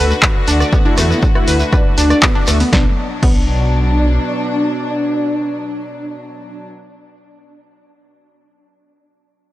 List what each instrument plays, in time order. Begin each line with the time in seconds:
Already playing: detuned saw bass D2, string section D3 A3 F#4, analog synth lead A4
0.10 synth pluck B4, shekere
0.22 synth pluck B4, kick, cross-stick, clap, shekere
0.48 detuned saw bass D2, synth pluck D4, open hi-hat, shekere
0.60 synth pluck D5, cross-stick, shekere
0.73 synth pluck B3, kick, shekere
0.85 synth pluck D4, analog synth lead E4
0.98 detuned saw bass E2, synth pluck A3, cross-stick, open hi-hat, shekere
1.10 synth pluck B3, shekere
1.22 kick, shekere
1.35 analog synth lead E4, synth pluck F#4, cross-stick
1.48 detuned saw bass D2, synth pluck B4, open hi-hat, shekere
1.60 synth pluck B4, shekere
1.72 analog synth lead D4, synth pluck B4, kick, cross-stick, shekere
1.98 detuned saw bass D2, synth pluck D4, analog synth lead D4, open hi-hat, shekere
2.10 synth pluck D5, cross-stick, shekere
2.22 synth pluck B3, kick, clap, shekere
2.35 synth pluck D4, analog synth lead D4
2.47 detuned saw bass D2, synth pluck A3, cross-stick, open hi-hat, shekere
2.60 synth pluck B3, open hi-hat, shekere
2.73 detuned saw bass B1, string section B2 F#3 D4, synth pluck B3, analog synth lead D4, kick, snare
3.23 detuned saw bass B1, synth pluck B3, analog synth lead D4, kick, crash